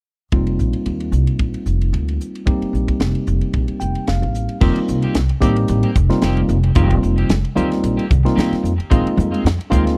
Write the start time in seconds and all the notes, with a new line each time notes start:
0.32 F1 G3 A#3 C4 D#4 F4, kick, ride
0.47 ride
0.59 A#1, hi-hat pedal
0.73 ride
0.86 D#2, ride
1.00 ride
1.12 C2, hi-hat pedal
1.27 ride
1.39 A#1, kick, ride
1.54 ride
1.66 F1, hi-hat pedal
1.81 ride
1.93 D2, ride
2.08 ride
2.21 hi-hat pedal
2.35 ride
2.46 F2 G3 A#3 C4 D#4 G4, kick, ride
2.62 muted upright bass stroke, ride
2.73 A#1, hi-hat pedal
2.88 muted upright bass stroke, kick, ride
3.00 F1, snare, ride
3.15 ride
3.27 F1, hi-hat pedal
3.41 ride
3.53 A#1, kick, ride
3.68 muted upright bass stroke, ride
3.80 F1 G5, hi-hat pedal
3.95 ride
4.07 F1 F5, snare, ride
4.22 A1, ride
4.34 hi-hat pedal
4.49 ride
4.61 F1 D#3 G3 A#3 C4 D#4 F4 G4, kick, crash
4.76 ride
4.88 C2, muted clean electric guitar stroke, hi-hat pedal
5.02 A#3 C4 G4, ride
5.15 C2, muted clean electric guitar stroke, snare, hi-hat pedal, ride
5.29 muted clean electric guitar stroke, ride
5.41 A1 D#3 G3 A#3 C4 D#4 G4, kick, hi-hat pedal
5.56 muted clean electric guitar stroke, ride
5.68 A1, hi-hat pedal, ride, muted conga
5.83 A#3 C4 G4, ride
5.95 F1, muted clean electric guitar stroke, kick, hi-hat pedal
6.10 G3 A#3 C4 D#4 F4, muted clean electric guitar stroke, snare, ride
6.22 F1 D#3 A#3 C4 G4, snare, hi-hat pedal, ride, high conga
6.37 ride
6.49 F1, muted clean electric guitar stroke, hi-hat pedal, high conga
6.63 muted clean electric guitar stroke, ride
6.75 F1 D#3 G3 A#3 C4 D#4 F4 G4, kick, hi-hat pedal, ride
6.90 kick, ride
7.03 F1, muted clean electric guitar stroke, hi-hat pedal
7.18 A#3 C4 G4, ride
7.29 F1, muted clean electric guitar stroke, snare, hi-hat pedal, ride, high conga
7.44 muted clean electric guitar stroke, ride
7.56 D2 D#3 G3 A#3 C4 D#4 F4 G4, hi-hat pedal, muted conga, high conga
7.71 muted clean electric guitar stroke, snare, ride
7.83 A#1, hi-hat pedal, ride, muted conga
7.97 A#3 C4 G4, ride
8.09 C2, muted clean electric guitar stroke, kick, hi-hat pedal, muted conga, low conga
8.23 G3 A#3 C4 D#4 F4, muted clean electric guitar stroke, muted upright bass stroke, snare, ride
8.36 F2 D#3 A#3 C4 G4, snare, hi-hat pedal, ride, high conga
8.52 muted upright bass stroke, snare, ride
8.63 F2, muted clean electric guitar stroke, hi-hat pedal
8.78 muted clean electric guitar stroke, muted upright bass stroke, ride
8.90 A#1 D#3 G#3 A#3 C4 D#4 F4, kick, hi-hat pedal, ride
9.05 muted upright bass stroke, ride
9.17 F2, muted clean electric guitar stroke, hi-hat pedal, high conga
9.32 G#3 C4 F4, ride
9.44 F2, muted clean electric guitar stroke, snare, hi-hat pedal, ride
9.59 muted clean electric guitar stroke, ride
9.70 D2 D#3 G#3 A#3 C4 D#4 F4, kick, hi-hat pedal, muted conga
9.86 muted clean electric guitar stroke, snare, ride